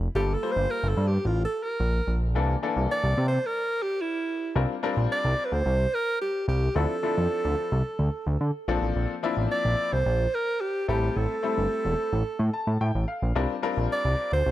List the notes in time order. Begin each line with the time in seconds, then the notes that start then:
0.15 G1 G3 A#3 F4 G4 A4
0.34 A4
0.42 G3 A#3 F4 C5
0.52 C5
0.56 G1
0.70 A#4
0.83 G1
0.89 A4
0.97 G2
1.08 G4
1.25 A1 F4
1.45 A4
1.63 A#4
1.80 A#1
2.07 A#1
2.35 C2 E3 A#3 D4 A4
2.62 E3 A#3 D4 A4
2.76 C2
2.91 D5
3.04 C2
3.18 C3
3.28 C5
3.46 A#4
3.82 G4
4.01 E4
4.55 C2 G3 C4 D4 F4 A#4
4.83 G3 C4 D4 F4 A#4
4.97 A#1
5.12 D5
5.25 C2
5.45 B4
5.52 D2 C5
5.66 C2
5.94 A#4
6.21 G4
6.48 C2 G4
6.75 D2 F3 C4 D4 E4 A4
7.03 F3 C4 D4 E4 A4
7.17 F2
7.45 D2
7.72 C2
7.99 D2
8.27 D2
8.41 D3
8.68 A#1 F3 A#3 C4 D4 A4
8.82 A1
8.96 A#1
9.23 F3 A#3 C4 D4 E4
9.37 A1
9.51 D5
9.65 A#1
9.93 C2 C5
10.06 A#1
10.34 A#4
10.61 G4
10.88 A1 G3 A3 C4 E4 G4 A4
11.17 A1 A4
11.42 G3 A3 C4 E4 A4
11.57 G1
11.85 E1
12.13 A1
12.39 A2
12.53 A5
12.67 A2
12.81 A2 G5
12.95 A1
13.08 F5
13.22 A#1
13.35 C2 G3 C4 D4 F4 A#4
13.62 G3 C4 D4 F4 A#4
13.77 A#1
13.93 D5
14.05 C2
14.32 D2 C5
14.46 C2